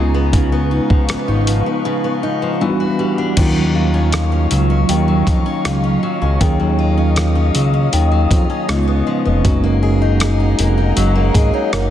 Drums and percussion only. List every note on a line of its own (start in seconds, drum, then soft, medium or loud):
0.33 kick loud
0.33 closed hi-hat medium
0.90 kick medium
1.09 cross-stick loud
1.09 closed hi-hat medium
1.47 closed hi-hat medium
3.37 kick loud
3.37 closed hi-hat medium
3.37 crash medium
4.12 cross-stick loud
4.12 closed hi-hat medium
4.51 closed hi-hat medium
4.89 closed hi-hat medium
5.27 kick medium
5.27 closed hi-hat medium
5.65 cross-stick loud
5.65 closed hi-hat medium
6.41 kick loud
6.41 closed hi-hat medium
7.16 cross-stick loud
7.16 closed hi-hat medium
7.55 closed hi-hat medium
7.93 closed hi-hat medium
8.31 kick medium
8.31 closed hi-hat medium
8.69 cross-stick loud
8.69 closed hi-hat medium
9.45 kick loud
9.45 closed hi-hat medium
10.20 cross-stick loud
10.20 closed hi-hat medium
10.59 closed hi-hat medium
10.97 closed hi-hat medium
11.35 kick medium
11.35 closed hi-hat medium
11.73 cross-stick loud
11.73 closed hi-hat medium